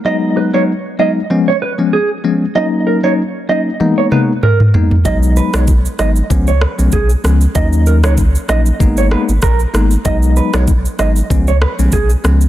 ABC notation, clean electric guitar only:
X:1
M:4/4
L:1/16
Q:"Swing 16ths" 1/4=96
K:G#dor
V:1 name="Clean electric guitar"
d z B c z2 d z2 c B z G2 z2 | d z A c z2 d z2 c B z A2 z2 | d z B c z2 d z2 c B z G2 z2 | d z A c z2 d z2 c B z A2 z2 |
d z B c z2 d z2 c B z G2 z2 |]